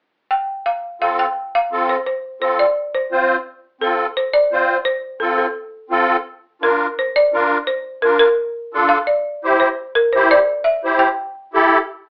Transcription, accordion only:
0, 0, Header, 1, 2, 480
1, 0, Start_track
1, 0, Key_signature, -1, "major"
1, 0, Tempo, 351083
1, 904, Time_signature, 4, 2, 24, 8
1, 16531, End_track
2, 0, Start_track
2, 0, Title_t, "Accordion"
2, 0, Program_c, 0, 21
2, 1384, Note_on_c, 0, 60, 61
2, 1384, Note_on_c, 0, 65, 55
2, 1388, Note_on_c, 0, 69, 67
2, 1720, Note_off_c, 0, 60, 0
2, 1721, Note_off_c, 0, 65, 0
2, 1722, Note_off_c, 0, 69, 0
2, 2347, Note_on_c, 0, 65, 59
2, 2348, Note_on_c, 0, 60, 67
2, 2357, Note_on_c, 0, 69, 74
2, 2682, Note_off_c, 0, 65, 0
2, 2683, Note_off_c, 0, 60, 0
2, 2687, Note_off_c, 0, 69, 0
2, 3292, Note_on_c, 0, 60, 62
2, 3302, Note_on_c, 0, 69, 69
2, 3309, Note_on_c, 0, 65, 57
2, 3635, Note_off_c, 0, 60, 0
2, 3640, Note_off_c, 0, 69, 0
2, 3644, Note_off_c, 0, 65, 0
2, 4259, Note_on_c, 0, 60, 68
2, 4260, Note_on_c, 0, 65, 62
2, 4264, Note_on_c, 0, 72, 76
2, 4598, Note_off_c, 0, 60, 0
2, 4599, Note_off_c, 0, 65, 0
2, 4601, Note_off_c, 0, 72, 0
2, 5209, Note_on_c, 0, 60, 60
2, 5224, Note_on_c, 0, 69, 69
2, 5226, Note_on_c, 0, 65, 57
2, 5553, Note_off_c, 0, 60, 0
2, 5561, Note_off_c, 0, 69, 0
2, 5562, Note_off_c, 0, 65, 0
2, 6179, Note_on_c, 0, 60, 63
2, 6185, Note_on_c, 0, 72, 74
2, 6186, Note_on_c, 0, 65, 64
2, 6518, Note_off_c, 0, 60, 0
2, 6521, Note_off_c, 0, 65, 0
2, 6521, Note_off_c, 0, 72, 0
2, 7123, Note_on_c, 0, 60, 62
2, 7129, Note_on_c, 0, 65, 58
2, 7131, Note_on_c, 0, 69, 70
2, 7470, Note_off_c, 0, 60, 0
2, 7473, Note_off_c, 0, 65, 0
2, 7474, Note_off_c, 0, 69, 0
2, 8067, Note_on_c, 0, 60, 78
2, 8075, Note_on_c, 0, 65, 73
2, 8088, Note_on_c, 0, 69, 90
2, 8422, Note_off_c, 0, 60, 0
2, 8425, Note_off_c, 0, 65, 0
2, 8432, Note_off_c, 0, 69, 0
2, 9043, Note_on_c, 0, 65, 59
2, 9051, Note_on_c, 0, 62, 67
2, 9059, Note_on_c, 0, 70, 68
2, 9389, Note_off_c, 0, 65, 0
2, 9393, Note_off_c, 0, 62, 0
2, 9397, Note_off_c, 0, 70, 0
2, 10030, Note_on_c, 0, 62, 66
2, 10030, Note_on_c, 0, 65, 64
2, 10033, Note_on_c, 0, 70, 74
2, 10362, Note_off_c, 0, 62, 0
2, 10362, Note_off_c, 0, 65, 0
2, 10364, Note_off_c, 0, 70, 0
2, 10983, Note_on_c, 0, 62, 65
2, 10991, Note_on_c, 0, 65, 55
2, 10994, Note_on_c, 0, 70, 67
2, 11318, Note_off_c, 0, 62, 0
2, 11322, Note_off_c, 0, 65, 0
2, 11324, Note_off_c, 0, 70, 0
2, 11948, Note_on_c, 0, 62, 79
2, 11948, Note_on_c, 0, 65, 75
2, 11949, Note_on_c, 0, 69, 87
2, 12280, Note_off_c, 0, 62, 0
2, 12281, Note_off_c, 0, 65, 0
2, 12281, Note_off_c, 0, 69, 0
2, 12908, Note_on_c, 0, 72, 70
2, 12909, Note_on_c, 0, 64, 62
2, 12912, Note_on_c, 0, 67, 56
2, 13240, Note_off_c, 0, 72, 0
2, 13241, Note_off_c, 0, 64, 0
2, 13242, Note_off_c, 0, 67, 0
2, 13874, Note_on_c, 0, 64, 70
2, 13878, Note_on_c, 0, 67, 62
2, 13885, Note_on_c, 0, 72, 73
2, 14203, Note_off_c, 0, 64, 0
2, 14205, Note_off_c, 0, 67, 0
2, 14208, Note_off_c, 0, 72, 0
2, 14820, Note_on_c, 0, 64, 67
2, 14827, Note_on_c, 0, 67, 56
2, 14827, Note_on_c, 0, 72, 68
2, 15156, Note_off_c, 0, 64, 0
2, 15159, Note_off_c, 0, 67, 0
2, 15159, Note_off_c, 0, 72, 0
2, 15770, Note_on_c, 0, 64, 79
2, 15775, Note_on_c, 0, 67, 80
2, 15783, Note_on_c, 0, 69, 92
2, 16110, Note_off_c, 0, 64, 0
2, 16113, Note_off_c, 0, 67, 0
2, 16116, Note_off_c, 0, 69, 0
2, 16531, End_track
0, 0, End_of_file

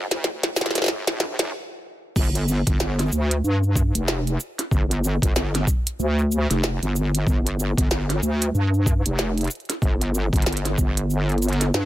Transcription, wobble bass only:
0, 0, Header, 1, 2, 480
1, 0, Start_track
1, 0, Key_signature, -2, "minor"
1, 0, Tempo, 638298
1, 1628, Time_signature, 4, 2, 24, 8
1, 8913, End_track
2, 0, Start_track
2, 0, Title_t, "Wobble bass"
2, 0, Program_c, 0, 39
2, 85, Note_on_c, 0, 38, 100
2, 409, Note_off_c, 0, 38, 0
2, 426, Note_on_c, 0, 31, 98
2, 787, Note_off_c, 0, 31, 0
2, 808, Note_on_c, 0, 34, 97
2, 1026, Note_off_c, 0, 34, 0
2, 1048, Note_on_c, 0, 29, 102
2, 1147, Note_off_c, 0, 29, 0
2, 1624, Note_on_c, 0, 31, 100
2, 1986, Note_off_c, 0, 31, 0
2, 2007, Note_on_c, 0, 31, 97
2, 2091, Note_off_c, 0, 31, 0
2, 2109, Note_on_c, 0, 31, 98
2, 2333, Note_off_c, 0, 31, 0
2, 2348, Note_on_c, 0, 38, 97
2, 2572, Note_off_c, 0, 38, 0
2, 2587, Note_on_c, 0, 43, 98
2, 2947, Note_off_c, 0, 43, 0
2, 2968, Note_on_c, 0, 29, 96
2, 3291, Note_off_c, 0, 29, 0
2, 3544, Note_on_c, 0, 31, 98
2, 3906, Note_off_c, 0, 31, 0
2, 3926, Note_on_c, 0, 31, 96
2, 4010, Note_off_c, 0, 31, 0
2, 4027, Note_on_c, 0, 31, 98
2, 4252, Note_off_c, 0, 31, 0
2, 4506, Note_on_c, 0, 38, 96
2, 4867, Note_off_c, 0, 38, 0
2, 4890, Note_on_c, 0, 29, 100
2, 5108, Note_off_c, 0, 29, 0
2, 5130, Note_on_c, 0, 31, 97
2, 5452, Note_off_c, 0, 31, 0
2, 5465, Note_on_c, 0, 31, 103
2, 5826, Note_off_c, 0, 31, 0
2, 5847, Note_on_c, 0, 31, 99
2, 5930, Note_off_c, 0, 31, 0
2, 5943, Note_on_c, 0, 31, 94
2, 6170, Note_off_c, 0, 31, 0
2, 6184, Note_on_c, 0, 38, 99
2, 6410, Note_off_c, 0, 38, 0
2, 6425, Note_on_c, 0, 43, 105
2, 6786, Note_off_c, 0, 43, 0
2, 6809, Note_on_c, 0, 29, 97
2, 7132, Note_off_c, 0, 29, 0
2, 7384, Note_on_c, 0, 31, 100
2, 7746, Note_off_c, 0, 31, 0
2, 7767, Note_on_c, 0, 31, 98
2, 7851, Note_off_c, 0, 31, 0
2, 7869, Note_on_c, 0, 31, 100
2, 8093, Note_off_c, 0, 31, 0
2, 8105, Note_on_c, 0, 31, 100
2, 8811, Note_off_c, 0, 31, 0
2, 8826, Note_on_c, 0, 43, 101
2, 8913, Note_off_c, 0, 43, 0
2, 8913, End_track
0, 0, End_of_file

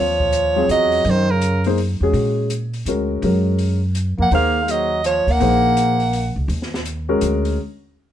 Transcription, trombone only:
0, 0, Header, 1, 2, 480
1, 0, Start_track
1, 0, Tempo, 362757
1, 1395, Time_signature, 3, 2, 24, 8
1, 10750, End_track
2, 0, Start_track
2, 0, Title_t, "Trombone"
2, 0, Program_c, 0, 57
2, 0, Note_on_c, 0, 53, 74
2, 903, Note_off_c, 0, 53, 0
2, 911, Note_on_c, 0, 54, 79
2, 1406, Note_on_c, 0, 51, 71
2, 1426, Note_off_c, 0, 54, 0
2, 1733, Note_on_c, 0, 49, 58
2, 1752, Note_off_c, 0, 51, 0
2, 2195, Note_off_c, 0, 49, 0
2, 5541, Note_on_c, 0, 58, 70
2, 5698, Note_off_c, 0, 58, 0
2, 5722, Note_on_c, 0, 58, 76
2, 6198, Note_on_c, 0, 54, 70
2, 6218, Note_off_c, 0, 58, 0
2, 6672, Note_off_c, 0, 54, 0
2, 6680, Note_on_c, 0, 53, 69
2, 6996, Note_on_c, 0, 58, 76
2, 7016, Note_off_c, 0, 53, 0
2, 8426, Note_off_c, 0, 58, 0
2, 10750, End_track
0, 0, End_of_file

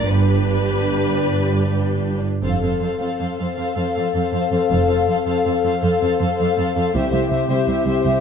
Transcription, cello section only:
0, 0, Header, 1, 2, 480
1, 0, Start_track
1, 0, Tempo, 391134
1, 112, Time_signature, 12, 3, 24, 8
1, 3470, Tempo, 374532
1, 10359, End_track
2, 0, Start_track
2, 0, Title_t, "Cello section"
2, 0, Program_c, 0, 48
2, 93, Note_on_c, 0, 43, 49
2, 2706, Note_off_c, 0, 43, 0
2, 2993, Note_on_c, 0, 41, 39
2, 3089, Note_off_c, 0, 41, 0
2, 3224, Note_on_c, 0, 41, 34
2, 3319, Note_off_c, 0, 41, 0
2, 3461, Note_on_c, 0, 41, 35
2, 3559, Note_off_c, 0, 41, 0
2, 3699, Note_on_c, 0, 41, 37
2, 3799, Note_off_c, 0, 41, 0
2, 3939, Note_on_c, 0, 41, 34
2, 4039, Note_off_c, 0, 41, 0
2, 4192, Note_on_c, 0, 41, 37
2, 4290, Note_off_c, 0, 41, 0
2, 4433, Note_on_c, 0, 41, 37
2, 4531, Note_off_c, 0, 41, 0
2, 4666, Note_on_c, 0, 41, 40
2, 4765, Note_off_c, 0, 41, 0
2, 4928, Note_on_c, 0, 41, 36
2, 5023, Note_off_c, 0, 41, 0
2, 5157, Note_on_c, 0, 41, 36
2, 5254, Note_off_c, 0, 41, 0
2, 5385, Note_on_c, 0, 41, 38
2, 5486, Note_off_c, 0, 41, 0
2, 5632, Note_on_c, 0, 41, 36
2, 5731, Note_off_c, 0, 41, 0
2, 5860, Note_on_c, 0, 41, 46
2, 5962, Note_off_c, 0, 41, 0
2, 6101, Note_on_c, 0, 41, 38
2, 6203, Note_off_c, 0, 41, 0
2, 6346, Note_on_c, 0, 41, 38
2, 6447, Note_off_c, 0, 41, 0
2, 6589, Note_on_c, 0, 41, 41
2, 6689, Note_off_c, 0, 41, 0
2, 6833, Note_on_c, 0, 41, 44
2, 6933, Note_off_c, 0, 41, 0
2, 7069, Note_on_c, 0, 41, 47
2, 7169, Note_off_c, 0, 41, 0
2, 7307, Note_on_c, 0, 41, 51
2, 7407, Note_off_c, 0, 41, 0
2, 7557, Note_on_c, 0, 41, 46
2, 7654, Note_off_c, 0, 41, 0
2, 7795, Note_on_c, 0, 41, 51
2, 7892, Note_off_c, 0, 41, 0
2, 8041, Note_on_c, 0, 41, 50
2, 8137, Note_off_c, 0, 41, 0
2, 8269, Note_on_c, 0, 41, 49
2, 8368, Note_off_c, 0, 41, 0
2, 8509, Note_on_c, 0, 41, 52
2, 8607, Note_off_c, 0, 41, 0
2, 8749, Note_on_c, 0, 36, 60
2, 8846, Note_off_c, 0, 36, 0
2, 8978, Note_on_c, 0, 36, 52
2, 9077, Note_off_c, 0, 36, 0
2, 9202, Note_on_c, 0, 36, 53
2, 9304, Note_off_c, 0, 36, 0
2, 9445, Note_on_c, 0, 36, 57
2, 9546, Note_off_c, 0, 36, 0
2, 9686, Note_on_c, 0, 36, 52
2, 9787, Note_off_c, 0, 36, 0
2, 9917, Note_on_c, 0, 36, 57
2, 10019, Note_off_c, 0, 36, 0
2, 10158, Note_on_c, 0, 36, 60
2, 10261, Note_off_c, 0, 36, 0
2, 10359, End_track
0, 0, End_of_file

